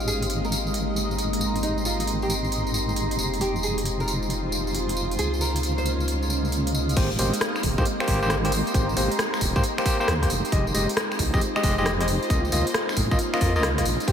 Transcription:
Already playing: G#1 G#3 A#3 C4 D#4 G4 D#5 F5
0.00 tambourine
0.07 G#4 A#5, tambourine
0.22 closed hi-hat, tambourine
0.30 closed hi-hat, tambourine
0.45 A#4, tambourine
0.52 closed hi-hat, tambourine
0.67 C6, tambourine
0.74 closed hi-hat, tambourine
0.96 tambourine
1.11 tambourine
1.18 closed hi-hat, tambourine
1.33 closed hi-hat, tambourine
1.41 tambourine
1.56 closed hi-hat, tambourine
1.63 D#4, closed hi-hat, tambourine
1.78 tambourine
1.85 F4, tambourine
2.00 closed hi-hat, tambourine
2.07 closed hi-hat, tambourine
2.22 G4, tambourine
2.30 closed hi-hat, tambourine
2.44 tambourine
2.52 closed hi-hat, tambourine
2.67 tambourine
2.74 tambourine
2.89 tambourine
2.96 closed hi-hat, tambourine
3.11 closed hi-hat, tambourine
3.19 F1 G#3 F4, tambourine
3.34 closed hi-hat, tambourine
3.41 G4, closed hi-hat, tambourine
3.52 C5, tambourine
3.63 G#4, tambourine
3.78 closed hi-hat, tambourine
3.85 closed hi-hat, tambourine
4.00 A#4, tambourine
4.08 closed hi-hat, tambourine
4.23 tambourine
4.30 closed hi-hat, tambourine
4.52 tambourine
4.67 tambourine
4.74 closed hi-hat, tambourine
4.89 closed hi-hat, tambourine
4.97 tambourine
5.11 closed hi-hat, tambourine
5.19 C#2 A#3 C#4 F4 G#4, closed hi-hat, tambourine
5.34 tambourine
5.41 A#4, tambourine
5.54 G#3, closed hi-hat, tambourine
5.63 closed hi-hat, tambourine
5.78 C5, tambourine
5.86 D#5, closed hi-hat, tambourine
6.00 F5, tambourine
6.08 closed hi-hat, tambourine
6.22 tambourine
6.30 tambourine
6.45 tambourine
6.52 closed hi-hat, tambourine
6.67 closed hi-hat, tambourine
6.74 tambourine
6.89 closed hi-hat, tambourine
6.97 G#1 A#3 C4 D#4 G4 C5, kick, closed hi-hat, crash, tambourine
7.11 tambourine
7.19 G#1 A#3 G4 C5, open hi-hat, tambourine
7.33 closed hi-hat, tambourine
7.41 cross-stick, closed hi-hat, tambourine
7.49 C6
7.56 finger snap, tambourine
7.63 D#1, kick, open hi-hat, tambourine
7.78 G#2 A#3 G4 C5 A#5, kick, tambourine
7.85 closed hi-hat, tambourine
8.00 A#3 G4 C5, finger snap, tambourine
8.08 G#1 A#3 G4 C5, kick, open hi-hat, tambourine
8.22 A#3 G4 C5, tambourine
8.30 cross-stick, closed hi-hat, tambourine
8.45 A#3 G4 C5, closed hi-hat, tambourine
8.52 open hi-hat, tambourine
8.67 closed hi-hat, tambourine
8.74 G#1 A#3 G4 C5, kick, closed hi-hat, tambourine
8.89 tambourine
8.97 G#1 A#3 G4 C5, open hi-hat, tambourine
9.11 closed hi-hat, tambourine
9.19 cross-stick, closed hi-hat, tambourine
9.34 finger snap, tambourine
9.41 D#1, kick, open hi-hat, tambourine
9.56 G#2 A#3 G4 C5, kick, tambourine
9.63 closed hi-hat, tambourine
9.78 A#3 G4 C5, finger snap, tambourine
9.85 A#3 G4 C5, kick, open hi-hat, tambourine
10.00 A#3 G4 C5, tambourine
10.08 D#2, cross-stick, closed hi-hat, tambourine
10.22 A#3 G4 C5, kick, closed hi-hat, tambourine
10.30 F1 G#3 C4 F4, open hi-hat, tambourine
10.45 closed hi-hat, tambourine
10.52 F1 G#3 G4 D#5, kick, closed hi-hat, tambourine
10.67 C5, tambourine
10.74 F1 G#3 G4 D#5, open hi-hat, tambourine
10.89 closed hi-hat, tambourine
10.97 cross-stick, closed hi-hat, tambourine
11.12 finger snap, tambourine
11.19 C2, kick, open hi-hat, tambourine
11.34 F2 G#3 G4 D#5, kick, tambourine
11.41 closed hi-hat, tambourine
11.56 G#3 G4 D#5, finger snap, tambourine
11.63 F1 G#3 G4 D#5, kick, open hi-hat, tambourine
11.78 G#3 G4 D#5, tambourine
11.86 cross-stick, closed hi-hat, tambourine
12.00 G#3 G4 D#5, closed hi-hat, tambourine
12.08 open hi-hat, tambourine
12.23 closed hi-hat, tambourine
12.30 C#2 A#3 C#4 F4 D#5, kick, closed hi-hat, tambourine
12.45 G#3, tambourine
12.52 C#2 A#3 F4 D#5, open hi-hat, tambourine
12.67 closed hi-hat, tambourine
12.74 cross-stick, closed hi-hat, tambourine
12.89 finger snap, tambourine
12.97 G#1, kick, open hi-hat, tambourine
13.05 F5
13.11 G#1 A#3 F4 D#5, kick, tambourine
13.19 closed hi-hat, tambourine
13.34 A#3 F4 D#5, finger snap, tambourine
13.41 F2 A#3 F4 D#5, kick, open hi-hat, tambourine
13.56 C#2 A#3 F4 D#5, tambourine
13.63 cross-stick, closed hi-hat, tambourine
13.78 A#3 F4 D#5, kick, closed hi-hat, tambourine
13.85 A#1, open hi-hat, tambourine
14.00 closed hi-hat, tambourine
14.07 G#1 A#3 C4 G4 C5, kick, closed hi-hat, tambourine

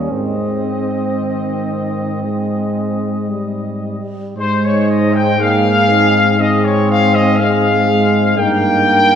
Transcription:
Already playing: D#2 G3 C#4
0.11 G#2 G#3 C4 D#5
1.18 D#3
2.24 G#3
3.30 G3
4.37 G#2 G#3 D#4 C5
4.64 C#5
4.90 D#5
5.14 G5
5.40 A#3 G#4 F5
5.91 C4
6.39 C4 G#4 D#5
6.64 C#5
6.90 F5
7.14 D#5
7.38 G#3 C4 F5
7.89 G#3
8.38 G2 A#3 D#4 A#4 G5

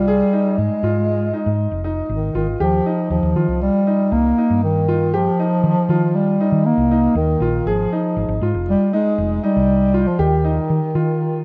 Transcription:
Already playing: C2 G3
0.08 G#4
0.33 D#4
0.58 G#2 G#3
0.83 G#2 F4
1.34 D#4
1.46 G#2
1.71 F1
1.84 D#4
2.09 G#1 D#3
2.35 G#1 D#3 F4
2.60 D#2 F3 G4
2.86 D#4
3.10 D#2 F3
3.23 D#2
3.35 D#3 F4
3.48 C2
3.63 G3
3.87 D#4
4.12 C2 A#3
4.38 D#4
4.50 G2
4.64 D#3
4.88 F4
5.14 F3 G4
5.39 D#4
5.63 D#3
5.89 D#3 F4
6.16 G3
6.41 D#4
6.52 D#3
6.66 A#3
6.78 C2
6.91 D#4
7.15 D#2 D#3
7.40 A#1 F4
7.66 G#1 F3 G#4
7.93 D#4
8.17 G#1
8.28 G#1
8.41 G#2 F4
8.55 F1
8.69 G3
8.93 G#3 D#4
9.18 F1
9.44 G3 D#4
9.56 C2
9.94 F4
10.08 F3
10.19 D#2 D#3 G4
10.45 D#4
10.70 D#3
10.95 D#3 F4

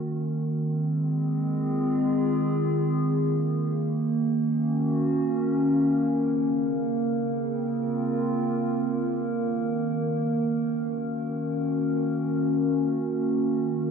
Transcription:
Already playing: D#3 A#3 A#4
0.44 C4
0.62 G#3
0.89 G#4
1.42 F4
3.20 A#3
4.21 C#4
4.51 F#4 A#4
6.23 C#3
7.03 C4
7.62 F4
9.34 D#3
10.54 C#4
10.72 F#4

